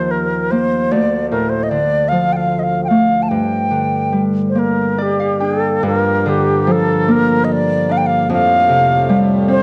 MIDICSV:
0, 0, Header, 1, 4, 480
1, 0, Start_track
1, 0, Key_signature, -2, "minor"
1, 0, Tempo, 795756
1, 548, Time_signature, 6, 3, 24, 8
1, 1993, Tempo, 842697
1, 3913, Tempo, 797872
1, 5689, End_track
2, 0, Start_track
2, 0, Title_t, "Flute"
2, 0, Program_c, 0, 73
2, 0, Note_on_c, 0, 72, 67
2, 66, Note_on_c, 0, 70, 61
2, 76, Note_off_c, 0, 72, 0
2, 308, Note_on_c, 0, 72, 72
2, 317, Note_off_c, 0, 70, 0
2, 552, Note_on_c, 0, 74, 72
2, 561, Note_off_c, 0, 72, 0
2, 787, Note_off_c, 0, 74, 0
2, 790, Note_on_c, 0, 70, 63
2, 902, Note_on_c, 0, 72, 64
2, 911, Note_off_c, 0, 70, 0
2, 985, Note_on_c, 0, 75, 50
2, 994, Note_off_c, 0, 72, 0
2, 1022, Note_on_c, 0, 74, 74
2, 1031, Note_off_c, 0, 75, 0
2, 1257, Note_on_c, 0, 77, 78
2, 1266, Note_off_c, 0, 74, 0
2, 1402, Note_on_c, 0, 79, 46
2, 1411, Note_off_c, 0, 77, 0
2, 1426, Note_on_c, 0, 77, 70
2, 1435, Note_off_c, 0, 79, 0
2, 1562, Note_on_c, 0, 75, 44
2, 1571, Note_off_c, 0, 77, 0
2, 1587, Note_on_c, 0, 77, 61
2, 1596, Note_off_c, 0, 75, 0
2, 1710, Note_off_c, 0, 77, 0
2, 1713, Note_on_c, 0, 79, 43
2, 1737, Note_on_c, 0, 77, 65
2, 1746, Note_off_c, 0, 79, 0
2, 1945, Note_on_c, 0, 81, 48
2, 1954, Note_off_c, 0, 77, 0
2, 1981, Note_on_c, 0, 79, 65
2, 1990, Note_off_c, 0, 81, 0
2, 2515, Note_off_c, 0, 79, 0
2, 2666, Note_on_c, 0, 72, 41
2, 2723, Note_on_c, 0, 70, 58
2, 2732, Note_off_c, 0, 72, 0
2, 2971, Note_on_c, 0, 67, 49
2, 2980, Note_off_c, 0, 70, 0
2, 3215, Note_on_c, 0, 69, 55
2, 3223, Note_off_c, 0, 67, 0
2, 3446, Note_off_c, 0, 69, 0
2, 3450, Note_on_c, 0, 70, 66
2, 3693, Note_on_c, 0, 67, 62
2, 3701, Note_off_c, 0, 70, 0
2, 3938, Note_on_c, 0, 69, 69
2, 3947, Note_off_c, 0, 67, 0
2, 4179, Note_on_c, 0, 70, 75
2, 4188, Note_off_c, 0, 69, 0
2, 4376, Note_on_c, 0, 75, 46
2, 4385, Note_off_c, 0, 70, 0
2, 4422, Note_on_c, 0, 74, 66
2, 4431, Note_off_c, 0, 75, 0
2, 4660, Note_on_c, 0, 77, 74
2, 4669, Note_off_c, 0, 74, 0
2, 4694, Note_on_c, 0, 79, 64
2, 4703, Note_off_c, 0, 77, 0
2, 4748, Note_on_c, 0, 77, 74
2, 4757, Note_off_c, 0, 79, 0
2, 4894, Note_off_c, 0, 77, 0
2, 4905, Note_on_c, 0, 77, 84
2, 5424, Note_off_c, 0, 77, 0
2, 5615, Note_on_c, 0, 72, 91
2, 5689, Note_off_c, 0, 72, 0
2, 5689, End_track
3, 0, Start_track
3, 0, Title_t, "Harp"
3, 0, Program_c, 1, 46
3, 0, Note_on_c, 1, 39, 53
3, 0, Note_on_c, 1, 51, 38
3, 0, Note_on_c, 1, 53, 40
3, 0, Note_on_c, 1, 58, 36
3, 0, Note_on_c, 1, 67, 40
3, 125, Note_off_c, 1, 58, 0
3, 312, Note_on_c, 1, 58, 45
3, 328, Note_off_c, 1, 67, 0
3, 551, Note_on_c, 1, 38, 58
3, 579, Note_off_c, 1, 39, 0
3, 579, Note_off_c, 1, 51, 0
3, 579, Note_off_c, 1, 53, 0
3, 793, Note_on_c, 1, 45, 41
3, 829, Note_off_c, 1, 58, 0
3, 1031, Note_on_c, 1, 50, 45
3, 1060, Note_off_c, 1, 45, 0
3, 1275, Note_on_c, 1, 53, 43
3, 1751, Note_on_c, 1, 57, 38
3, 1995, Note_on_c, 1, 43, 54
3, 2020, Note_off_c, 1, 53, 0
3, 2021, Note_off_c, 1, 38, 0
3, 2021, Note_off_c, 1, 50, 0
3, 2221, Note_on_c, 1, 50, 40
3, 2458, Note_on_c, 1, 55, 42
3, 2703, Note_on_c, 1, 58, 42
3, 2737, Note_off_c, 1, 57, 0
3, 2949, Note_on_c, 1, 74, 47
3, 3069, Note_on_c, 1, 77, 44
3, 3187, Note_on_c, 1, 62, 35
3, 3189, Note_on_c, 1, 79, 40
3, 3424, Note_off_c, 1, 43, 0
3, 3431, Note_on_c, 1, 43, 57
3, 3464, Note_off_c, 1, 50, 0
3, 3464, Note_off_c, 1, 55, 0
3, 3676, Note_on_c, 1, 50, 45
3, 3911, Note_on_c, 1, 53, 46
3, 4006, Note_off_c, 1, 74, 0
3, 4023, Note_off_c, 1, 77, 0
3, 4082, Note_off_c, 1, 79, 0
3, 4157, Note_off_c, 1, 58, 0
3, 4159, Note_on_c, 1, 58, 49
3, 4642, Note_off_c, 1, 62, 0
3, 4644, Note_on_c, 1, 62, 46
3, 4887, Note_on_c, 1, 41, 63
3, 4914, Note_off_c, 1, 43, 0
3, 4914, Note_off_c, 1, 50, 0
3, 4914, Note_off_c, 1, 53, 0
3, 5123, Note_on_c, 1, 48, 52
3, 5367, Note_on_c, 1, 55, 50
3, 5601, Note_on_c, 1, 60, 54
3, 5689, Note_off_c, 1, 41, 0
3, 5689, Note_off_c, 1, 48, 0
3, 5689, Note_off_c, 1, 55, 0
3, 5689, Note_off_c, 1, 58, 0
3, 5689, Note_off_c, 1, 60, 0
3, 5689, Note_off_c, 1, 62, 0
3, 5689, End_track
4, 0, Start_track
4, 0, Title_t, "Harmonium"
4, 0, Program_c, 2, 20
4, 3434, Note_on_c, 2, 43, 61
4, 3434, Note_on_c, 2, 53, 59
4, 3435, Note_on_c, 2, 58, 74
4, 4868, Note_off_c, 2, 43, 0
4, 4868, Note_off_c, 2, 53, 0
4, 4868, Note_off_c, 2, 58, 0
4, 4879, Note_on_c, 2, 53, 63
4, 4882, Note_on_c, 2, 45, 69
4, 4883, Note_on_c, 2, 55, 83
4, 5689, Note_off_c, 2, 45, 0
4, 5689, Note_off_c, 2, 53, 0
4, 5689, Note_off_c, 2, 55, 0
4, 5689, End_track
0, 0, End_of_file